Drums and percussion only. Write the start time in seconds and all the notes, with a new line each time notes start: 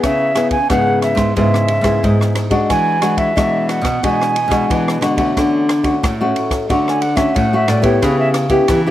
0.04 kick, cross-stick, ride
0.36 cross-stick, ride
0.51 kick, ride
0.70 kick, cross-stick, ride
1.02 cross-stick, ride
1.17 kick, cross-stick, ride
1.37 kick, ride
1.54 cross-stick
1.68 ride
1.84 kick, cross-stick, ride
2.04 kick, ride
2.21 cross-stick
2.35 cross-stick, ride
2.51 kick, ride
2.70 kick, cross-stick, ride
3.02 cross-stick, ride
3.17 kick, ride
3.37 kick, cross-stick, ride
3.69 cross-stick, ride
3.84 kick, cross-stick, ride
4.04 kick, ride
4.21 cross-stick
4.36 ride
4.51 kick, cross-stick, ride
4.70 kick, ride
4.88 cross-stick
5.02 cross-stick, ride
5.17 kick, ride
5.37 kick, cross-stick, ride
5.69 cross-stick, ride
5.84 kick, ride
6.04 kick, cross-stick, ride
6.36 ride
6.51 kick, cross-stick, ride
6.70 kick, ride
6.88 cross-stick
7.02 ride
7.17 kick, cross-stick, ride
7.36 kick, ride
7.68 cross-stick, ride
7.83 kick, ride
8.02 kick, cross-stick, ride
8.34 cross-stick, ride
8.50 kick, ride
8.68 kick, cross-stick, ride